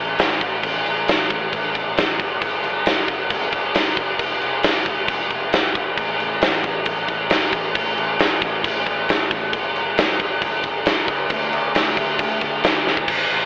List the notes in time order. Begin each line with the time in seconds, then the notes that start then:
Already playing: A1
0.19 A1, snare, crash
0.31 snare
0.41 A1, kick, crash
0.63 A1, kick, crash
0.86 A1, crash
1.08 A1, snare, crash
1.30 A1, kick, crash
1.53 A1, kick, crash
1.75 A1, kick, crash
1.97 A1, snare, crash
2.20 F#1, kick, crash
2.42 G1, kick, crash
2.64 G1, crash
2.86 G1, snare, crash
3.08 G1, kick, crash
3.30 G1, kick, crash
3.52 G1, kick, crash
3.75 G1, snare, crash
3.86 snare
3.97 F#1, kick, crash
4.19 F1, kick, crash
4.41 F1, crash
4.63 F1, snare, crash
4.85 F1, kick, crash
5.08 F1, kick, crash
5.30 F1, kick, crash
5.53 F1, snare, crash
5.65 snare
5.75 F1, kick, crash
5.97 A1, kick, crash
6.20 A1, crash
6.42 A1, snare, crash
6.64 A1, kick, crash
6.85 A1, kick, crash
7.08 A1, kick, crash
7.30 A1, snare, crash
7.43 snare
7.52 A1, kick, crash
7.75 A1, kick, crash
7.98 A1, crash
8.19 A1, snare, crash
8.42 A1, kick, crash
8.64 A1, kick, crash
8.86 A1, kick, crash
9.08 A1, snare, crash
9.31 A1, kick, crash
9.53 G1, kick, crash
9.75 G1, crash
9.97 G1, snare, crash
10.20 G1, kick, crash
10.42 G1, kick, crash
10.63 G1, kick, crash
10.86 G1, snare, crash
11.08 C#2, kick, crash
11.30 D2, kick, crash
11.53 D2, crash
11.75 D2, snare, crash
11.97 D2, kick, crash
12.19 D2, kick, crash
12.41 D2, kick, crash
12.64 D2, snare, crash
12.87 D2, snare
12.97 kick
13.08 A1, kick, crash
13.30 A1, crash